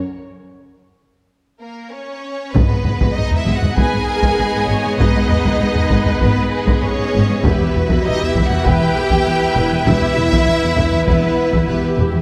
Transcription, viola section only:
X:1
M:4/4
L:1/8
Q:1/4=98
K:G#m
V:1 name="Viola section"
z8 | z4 B A B c | B2 B4 G2 | =G F G2 B G B2 |
=G E4- E G2 |]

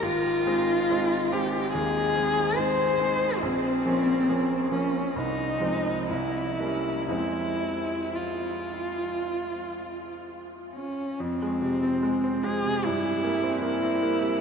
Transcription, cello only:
X:1
M:4/4
L:1/8
Q:1/4=69
K:Fm
V:1 name="Cello"
F3 G A2 c2 | C3 D E2 =E2 | =E2 F4 z D | C3 A =E2 E2 |]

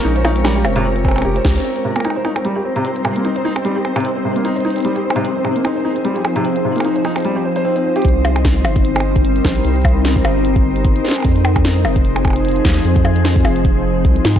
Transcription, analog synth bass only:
X:1
M:4/4
L:1/8
Q:"Swing 16ths" 1/4=150
K:Cphr
V:1 name="Analog synth bass" clef=bass
B,,,3 F,,,3 F,,, D,, | z8 | z8 | z8 |
z8 | C,,3 G,,,4 B,,, | C,,3 G,,,4 z | F,,3 F,,,4 E,, |
F,,3 F,,,3 C,, A,, |]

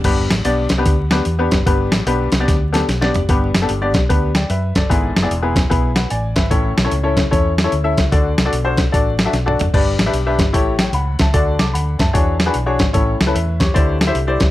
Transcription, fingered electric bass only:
X:1
M:4/4
L:1/8
Q:"Swing" 1/4=149
K:G
V:1 name="Fingered electric bass" clef=bass
G,,, A,,, B,,, C,, D,,2 E,, F,,, | G,,, A,,, B,,, C,, D,,2 B,,, F,,, | G,,, F,,, G,,, B,,, D,,2 F,, G,,, | ^G,,, F,,, E,,,2 B,,,2 A,,, G,,, |
A,,, B,,, ^C,,2 E,,2 D,, C,, | D,, C,, B,,,2 A,,,2 B,,, F,,, | G,,, A,,, B,,, G,,, A,,,2 ^C,, C,, | D,, C,, D,, F,, E,,2 B,,, ^G,,, |
A,,, ^C,, E,,2 D,,2 =C,, ^C,, |]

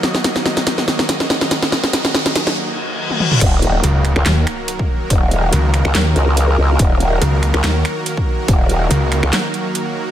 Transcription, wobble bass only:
X:1
M:4/4
L:1/16
Q:"Swing 16ths" 1/4=142
K:Ebm
V:1 name="Wobble bass" clef=bass
z16 | z16 | E,,,4 z3 D,, z8 | E,,,4 z3 D,, z2 D,,4 D,,2 |
E,,,4 z3 D,, z8 | E,,,4 z3 D,, z8 |]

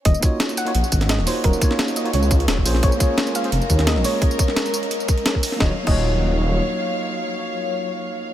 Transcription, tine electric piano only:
X:1
M:4/4
L:1/16
Q:1/4=173
K:Ebm
V:1 name="Tine electric piano"
z2 [B,EFGd]4- [B,EFGd] [B,EFGd] z6 [B,EFGd]2- | [B,EFGd]2 [B,EFGd]4- [B,EFGd] [B,EFGd] z6 [B,DFA=c]2- | [B,DFA=c]2 [B,DFAd]4- [B,DFAd] [B,DFAc] z6 [B,DFAd]2- | [B,DFAd]2 z12 z2 |
[B,EFGd] z2 [B,EFGd]12- [B,EFGd]- | [B,EFGd]16 |]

